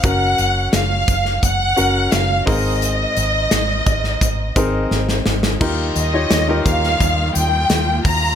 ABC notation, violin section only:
X:1
M:4/4
L:1/8
Q:1/4=86
K:Ablyd
V:1 name="Violin section"
_g2 f2 g2 f e- | e6 z2 | [K:Eb] z e2 f2 g2 b |]